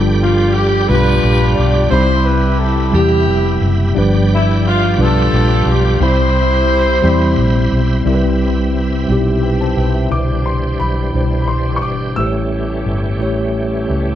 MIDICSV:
0, 0, Header, 1, 6, 480
1, 0, Start_track
1, 0, Key_signature, 0, "major"
1, 0, Tempo, 684151
1, 1345, Time_signature, 6, 3, 24, 8
1, 9928, End_track
2, 0, Start_track
2, 0, Title_t, "Grand piano"
2, 0, Program_c, 0, 0
2, 7098, Note_on_c, 0, 86, 62
2, 7323, Note_off_c, 0, 86, 0
2, 7337, Note_on_c, 0, 84, 56
2, 7563, Note_off_c, 0, 84, 0
2, 7575, Note_on_c, 0, 83, 69
2, 7996, Note_off_c, 0, 83, 0
2, 8006, Note_on_c, 0, 83, 48
2, 8051, Note_on_c, 0, 84, 58
2, 8061, Note_off_c, 0, 83, 0
2, 8254, Note_on_c, 0, 85, 53
2, 8255, Note_off_c, 0, 84, 0
2, 8293, Note_on_c, 0, 86, 66
2, 8305, Note_off_c, 0, 85, 0
2, 8533, Note_on_c, 0, 88, 70
2, 8548, Note_off_c, 0, 86, 0
2, 9236, Note_off_c, 0, 88, 0
2, 9928, End_track
3, 0, Start_track
3, 0, Title_t, "Tonewheel organ"
3, 0, Program_c, 1, 16
3, 0, Note_on_c, 1, 67, 66
3, 0, Note_on_c, 1, 74, 54
3, 0, Note_on_c, 1, 79, 61
3, 0, Note_on_c, 1, 83, 73
3, 1329, Note_off_c, 1, 74, 0
3, 1330, Note_off_c, 1, 79, 0
3, 1337, Note_on_c, 1, 76, 58
3, 2758, Note_off_c, 1, 83, 0
3, 2763, Note_off_c, 1, 76, 0
3, 2778, Note_on_c, 1, 74, 56
3, 2779, Note_on_c, 1, 79, 65
3, 2779, Note_on_c, 1, 83, 73
3, 4203, Note_off_c, 1, 74, 0
3, 4203, Note_off_c, 1, 79, 0
3, 4216, Note_on_c, 1, 72, 61
3, 4217, Note_on_c, 1, 76, 66
3, 5629, Note_off_c, 1, 83, 0
3, 5630, Note_off_c, 1, 67, 0
3, 5643, Note_off_c, 1, 72, 0
3, 5643, Note_off_c, 1, 76, 0
3, 5653, Note_on_c, 1, 83, 57
3, 5654, Note_on_c, 1, 60, 48
3, 5657, Note_on_c, 1, 76, 53
3, 5660, Note_on_c, 1, 67, 56
3, 7084, Note_off_c, 1, 83, 0
3, 7085, Note_off_c, 1, 60, 0
3, 7086, Note_off_c, 1, 76, 0
3, 7087, Note_off_c, 1, 67, 0
3, 7091, Note_on_c, 1, 72, 38
3, 7094, Note_on_c, 1, 52, 47
3, 7094, Note_on_c, 1, 55, 45
3, 7095, Note_on_c, 1, 67, 54
3, 7096, Note_on_c, 1, 62, 41
3, 8527, Note_off_c, 1, 72, 0
3, 8529, Note_off_c, 1, 55, 0
3, 8530, Note_off_c, 1, 62, 0
3, 8546, Note_on_c, 1, 57, 46
3, 8551, Note_on_c, 1, 55, 45
3, 8554, Note_on_c, 1, 61, 46
3, 9928, Note_off_c, 1, 52, 0
3, 9928, Note_off_c, 1, 55, 0
3, 9928, Note_off_c, 1, 57, 0
3, 9928, Note_off_c, 1, 61, 0
3, 9928, Note_off_c, 1, 67, 0
3, 9928, End_track
4, 0, Start_track
4, 0, Title_t, "Horn section"
4, 0, Program_c, 2, 61
4, 153, Note_on_c, 2, 65, 79
4, 373, Note_off_c, 2, 65, 0
4, 380, Note_on_c, 2, 67, 91
4, 619, Note_on_c, 2, 71, 92
4, 623, Note_off_c, 2, 67, 0
4, 629, Note_on_c, 2, 65, 70
4, 634, Note_on_c, 2, 62, 67
4, 1090, Note_on_c, 2, 74, 88
4, 1102, Note_off_c, 2, 71, 0
4, 1318, Note_off_c, 2, 65, 0
4, 1320, Note_off_c, 2, 62, 0
4, 1320, Note_off_c, 2, 74, 0
4, 1338, Note_on_c, 2, 72, 100
4, 1355, Note_on_c, 2, 64, 81
4, 1355, Note_on_c, 2, 67, 82
4, 1579, Note_on_c, 2, 71, 105
4, 1581, Note_off_c, 2, 72, 0
4, 1821, Note_off_c, 2, 71, 0
4, 1822, Note_on_c, 2, 69, 90
4, 2040, Note_off_c, 2, 64, 0
4, 2040, Note_off_c, 2, 67, 0
4, 2062, Note_off_c, 2, 69, 0
4, 2066, Note_on_c, 2, 67, 87
4, 2078, Note_on_c, 2, 59, 64
4, 2078, Note_on_c, 2, 64, 61
4, 2603, Note_off_c, 2, 67, 0
4, 2761, Note_off_c, 2, 59, 0
4, 2761, Note_off_c, 2, 64, 0
4, 3044, Note_on_c, 2, 64, 79
4, 3256, Note_off_c, 2, 64, 0
4, 3280, Note_on_c, 2, 65, 85
4, 3494, Note_off_c, 2, 65, 0
4, 3510, Note_on_c, 2, 62, 69
4, 3512, Note_on_c, 2, 65, 72
4, 3518, Note_on_c, 2, 69, 97
4, 3988, Note_off_c, 2, 69, 0
4, 3992, Note_on_c, 2, 67, 85
4, 4196, Note_off_c, 2, 62, 0
4, 4197, Note_off_c, 2, 65, 0
4, 4225, Note_off_c, 2, 67, 0
4, 4230, Note_on_c, 2, 64, 87
4, 4233, Note_on_c, 2, 67, 80
4, 4233, Note_on_c, 2, 72, 106
4, 5396, Note_off_c, 2, 64, 0
4, 5398, Note_off_c, 2, 67, 0
4, 5426, Note_off_c, 2, 72, 0
4, 9928, End_track
5, 0, Start_track
5, 0, Title_t, "Tine electric piano"
5, 0, Program_c, 3, 4
5, 0, Control_c, 3, 64, 127
5, 0, Note_on_c, 3, 53, 70
5, 0, Note_on_c, 3, 55, 79
5, 0, Note_on_c, 3, 62, 74
5, 0, Note_on_c, 3, 65, 72
5, 0, Note_on_c, 3, 69, 94
5, 0, Note_on_c, 3, 71, 92
5, 471, Note_off_c, 3, 55, 0
5, 477, Note_off_c, 3, 62, 0
5, 479, Note_off_c, 3, 65, 0
5, 483, Note_off_c, 3, 69, 0
5, 621, Note_on_c, 3, 55, 69
5, 627, Note_on_c, 3, 62, 59
5, 633, Note_on_c, 3, 43, 57
5, 636, Note_on_c, 3, 65, 59
5, 645, Note_on_c, 3, 67, 73
5, 1191, Note_off_c, 3, 55, 0
5, 1195, Note_off_c, 3, 62, 0
5, 1199, Note_off_c, 3, 65, 0
5, 1203, Note_off_c, 3, 67, 0
5, 1320, Note_off_c, 3, 43, 0
5, 1331, Note_on_c, 3, 55, 78
5, 1340, Note_on_c, 3, 60, 60
5, 1345, Note_on_c, 3, 48, 63
5, 1346, Note_on_c, 3, 63, 57
5, 1354, Note_off_c, 3, 53, 0
5, 1354, Control_c, 3, 64, 0
5, 1356, Note_on_c, 3, 83, 86
5, 1358, Note_off_c, 3, 71, 0
5, 1392, Note_off_c, 3, 63, 0
5, 1395, Note_on_c, 3, 64, 63
5, 1474, Control_c, 3, 64, 127
5, 1906, Note_off_c, 3, 55, 0
5, 1910, Note_off_c, 3, 60, 0
5, 1918, Note_off_c, 3, 83, 0
5, 1937, Note_off_c, 3, 64, 0
5, 2035, Note_off_c, 3, 48, 0
5, 2046, Note_on_c, 3, 55, 65
5, 2054, Note_on_c, 3, 48, 62
5, 2063, Note_on_c, 3, 64, 61
5, 2070, Note_on_c, 3, 67, 76
5, 2622, Note_off_c, 3, 55, 0
5, 2626, Note_off_c, 3, 48, 0
5, 2631, Note_off_c, 3, 64, 0
5, 2634, Note_off_c, 3, 67, 0
5, 2769, Note_on_c, 3, 55, 90
5, 2777, Note_on_c, 3, 62, 84
5, 2781, Note_on_c, 3, 43, 68
5, 2783, Note_on_c, 3, 53, 79
5, 2790, Control_c, 3, 64, 0
5, 2794, Note_on_c, 3, 71, 95
5, 2924, Control_c, 3, 64, 127
5, 3343, Note_off_c, 3, 55, 0
5, 3347, Note_off_c, 3, 62, 0
5, 3350, Note_off_c, 3, 53, 0
5, 3355, Note_off_c, 3, 71, 0
5, 3472, Note_off_c, 3, 43, 0
5, 3487, Note_on_c, 3, 55, 68
5, 3499, Note_on_c, 3, 62, 63
5, 3504, Note_on_c, 3, 65, 59
5, 3512, Note_on_c, 3, 71, 78
5, 4061, Note_off_c, 3, 55, 0
5, 4068, Note_off_c, 3, 62, 0
5, 4070, Note_off_c, 3, 65, 0
5, 4074, Note_off_c, 3, 71, 0
5, 4203, Note_on_c, 3, 55, 68
5, 4213, Note_on_c, 3, 60, 62
5, 4217, Note_on_c, 3, 48, 57
5, 4223, Note_on_c, 3, 64, 63
5, 4227, Control_c, 3, 64, 0
5, 4229, Note_on_c, 3, 83, 79
5, 4371, Control_c, 3, 64, 127
5, 4780, Note_off_c, 3, 55, 0
5, 4784, Note_off_c, 3, 60, 0
5, 4790, Note_off_c, 3, 64, 0
5, 4792, Note_off_c, 3, 83, 0
5, 4909, Note_off_c, 3, 48, 0
5, 4925, Note_on_c, 3, 55, 84
5, 4936, Note_on_c, 3, 60, 76
5, 4943, Note_on_c, 3, 64, 74
5, 4951, Note_on_c, 3, 83, 79
5, 5501, Note_off_c, 3, 55, 0
5, 5506, Note_off_c, 3, 60, 0
5, 5510, Note_off_c, 3, 64, 0
5, 5514, Note_off_c, 3, 83, 0
5, 5647, Note_on_c, 3, 55, 76
5, 5655, Note_on_c, 3, 60, 66
5, 5658, Note_on_c, 3, 48, 60
5, 5661, Note_on_c, 3, 64, 70
5, 5667, Control_c, 3, 64, 0
5, 5672, Note_on_c, 3, 70, 68
5, 5711, Note_off_c, 3, 70, 0
5, 5716, Note_on_c, 3, 71, 83
5, 5783, Control_c, 3, 64, 127
5, 6222, Note_off_c, 3, 55, 0
5, 6226, Note_off_c, 3, 60, 0
5, 6229, Note_off_c, 3, 64, 0
5, 6257, Note_off_c, 3, 71, 0
5, 6351, Note_off_c, 3, 48, 0
5, 6372, Note_on_c, 3, 55, 65
5, 6379, Note_on_c, 3, 60, 63
5, 6388, Note_on_c, 3, 63, 50
5, 6397, Note_on_c, 3, 67, 83
5, 6430, Note_off_c, 3, 63, 0
5, 6435, Note_on_c, 3, 64, 63
5, 6618, Note_on_c, 3, 79, 51
5, 6624, Note_on_c, 3, 71, 47
5, 6629, Note_off_c, 3, 67, 0
5, 6733, Note_off_c, 3, 79, 0
5, 6736, Note_off_c, 3, 71, 0
5, 6742, Note_on_c, 3, 81, 59
5, 6747, Note_on_c, 3, 72, 52
5, 6856, Note_off_c, 3, 81, 0
5, 6856, Note_on_c, 3, 79, 57
5, 6858, Note_off_c, 3, 72, 0
5, 6862, Note_on_c, 3, 71, 48
5, 6946, Note_off_c, 3, 55, 0
5, 6950, Note_off_c, 3, 60, 0
5, 6973, Note_off_c, 3, 79, 0
5, 6976, Note_off_c, 3, 71, 0
5, 6978, Note_off_c, 3, 64, 0
5, 6978, Note_on_c, 3, 76, 49
5, 6986, Note_on_c, 3, 67, 44
5, 7082, Note_on_c, 3, 47, 47
5, 7092, Note_on_c, 3, 62, 45
5, 7096, Note_on_c, 3, 50, 41
5, 7098, Note_on_c, 3, 64, 46
5, 7108, Note_on_c, 3, 71, 44
5, 7111, Control_c, 3, 64, 0
5, 7150, Note_on_c, 3, 72, 49
5, 7151, Note_off_c, 3, 71, 0
5, 7208, Note_off_c, 3, 76, 0
5, 7212, Note_off_c, 3, 67, 0
5, 7236, Control_c, 3, 64, 127
5, 7662, Note_off_c, 3, 47, 0
5, 7668, Note_off_c, 3, 62, 0
5, 7671, Note_off_c, 3, 64, 0
5, 7696, Note_off_c, 3, 72, 0
5, 7793, Note_off_c, 3, 50, 0
5, 7809, Note_on_c, 3, 47, 50
5, 7814, Note_on_c, 3, 62, 41
5, 7825, Note_on_c, 3, 64, 41
5, 7831, Note_on_c, 3, 72, 52
5, 8388, Note_off_c, 3, 47, 0
5, 8390, Note_off_c, 3, 62, 0
5, 8396, Note_off_c, 3, 64, 0
5, 8398, Note_off_c, 3, 72, 0
5, 8533, Note_on_c, 3, 57, 50
5, 8542, Note_on_c, 3, 64, 50
5, 8546, Note_on_c, 3, 45, 44
5, 8550, Note_on_c, 3, 67, 47
5, 8555, Control_c, 3, 64, 0
5, 8560, Note_on_c, 3, 72, 47
5, 8600, Note_off_c, 3, 72, 0
5, 8602, Note_on_c, 3, 73, 55
5, 8681, Control_c, 3, 64, 127
5, 9112, Note_off_c, 3, 57, 0
5, 9116, Note_off_c, 3, 64, 0
5, 9120, Note_off_c, 3, 67, 0
5, 9146, Note_off_c, 3, 73, 0
5, 9242, Note_off_c, 3, 45, 0
5, 9255, Note_on_c, 3, 57, 55
5, 9263, Note_on_c, 3, 64, 59
5, 9274, Note_on_c, 3, 67, 57
5, 9279, Note_on_c, 3, 73, 66
5, 9835, Note_off_c, 3, 57, 0
5, 9839, Note_off_c, 3, 64, 0
5, 9844, Note_off_c, 3, 67, 0
5, 9847, Note_off_c, 3, 73, 0
5, 9928, End_track
6, 0, Start_track
6, 0, Title_t, "Fingered electric bass"
6, 0, Program_c, 4, 33
6, 0, Note_on_c, 4, 31, 107
6, 600, Note_off_c, 4, 31, 0
6, 627, Note_on_c, 4, 35, 93
6, 847, Note_off_c, 4, 35, 0
6, 866, Note_on_c, 4, 34, 93
6, 1087, Note_off_c, 4, 34, 0
6, 1109, Note_on_c, 4, 35, 84
6, 1328, Note_off_c, 4, 35, 0
6, 1344, Note_on_c, 4, 36, 106
6, 2034, Note_off_c, 4, 36, 0
6, 2059, Note_on_c, 4, 40, 88
6, 2281, Note_off_c, 4, 40, 0
6, 2297, Note_on_c, 4, 29, 80
6, 2520, Note_off_c, 4, 29, 0
6, 2536, Note_on_c, 4, 30, 99
6, 2759, Note_off_c, 4, 30, 0
6, 2782, Note_on_c, 4, 31, 105
6, 3472, Note_off_c, 4, 31, 0
6, 3494, Note_on_c, 4, 35, 91
6, 3717, Note_off_c, 4, 35, 0
6, 3737, Note_on_c, 4, 34, 90
6, 3958, Note_off_c, 4, 34, 0
6, 3970, Note_on_c, 4, 35, 90
6, 4195, Note_off_c, 4, 35, 0
6, 4213, Note_on_c, 4, 36, 114
6, 4907, Note_off_c, 4, 36, 0
6, 4936, Note_on_c, 4, 40, 93
6, 5158, Note_off_c, 4, 40, 0
6, 5171, Note_on_c, 4, 34, 81
6, 5396, Note_off_c, 4, 34, 0
6, 5415, Note_on_c, 4, 35, 79
6, 5638, Note_off_c, 4, 35, 0
6, 5651, Note_on_c, 4, 36, 93
6, 6348, Note_off_c, 4, 36, 0
6, 6376, Note_on_c, 4, 35, 88
6, 6831, Note_off_c, 4, 35, 0
6, 6856, Note_on_c, 4, 35, 83
6, 7080, Note_off_c, 4, 35, 0
6, 7094, Note_on_c, 4, 36, 73
6, 7551, Note_off_c, 4, 36, 0
6, 7581, Note_on_c, 4, 35, 57
6, 7804, Note_off_c, 4, 35, 0
6, 7818, Note_on_c, 4, 36, 60
6, 8305, Note_off_c, 4, 36, 0
6, 8305, Note_on_c, 4, 32, 65
6, 8527, Note_off_c, 4, 32, 0
6, 8541, Note_on_c, 4, 33, 77
6, 8998, Note_off_c, 4, 33, 0
6, 9023, Note_on_c, 4, 31, 64
6, 9262, Note_off_c, 4, 31, 0
6, 9262, Note_on_c, 4, 33, 74
6, 9721, Note_off_c, 4, 33, 0
6, 9747, Note_on_c, 4, 37, 57
6, 9928, Note_off_c, 4, 37, 0
6, 9928, End_track
0, 0, End_of_file